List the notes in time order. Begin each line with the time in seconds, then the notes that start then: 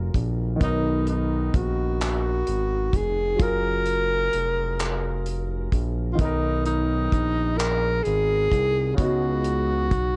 Already playing: F1 F#3 F4 G#4 A#4
0.14 A#1, kick, closed hi-hat
0.56 D#3 B3
0.61 B1 D#4, kick, closed hi-hat
0.66 A#4
1.07 D#4, closed hi-hat
1.54 A#1 F#4, kick, closed hi-hat
2.01 F#4, clap, closed hi-hat
2.47 G#1, closed hi-hat
2.93 F1 G#4, kick, closed hi-hat
3.36 F#3 F4, kick, closed hi-hat
3.40 F#1 G#4 A#4
3.45 A#4
3.86 closed hi-hat
4.33 F1, closed hi-hat
4.79 clap, closed hi-hat
5.26 closed hi-hat
5.72 A#1, kick, closed hi-hat
6.12 D#3 F4
6.18 B1 B3 D#4, kick, closed hi-hat
6.25 A#4
6.65 D#4, closed hi-hat
7.12 A#1, kick, closed hi-hat
7.58 A#4, clap, closed hi-hat
8.03 G#1 G#4, closed hi-hat
8.52 C2, kick, closed hi-hat
8.94 C#3 B3 F#4, kick
8.98 C#2 D#4, closed hi-hat
9.04 F#4
9.44 closed hi-hat
9.91 B1, kick, closed hi-hat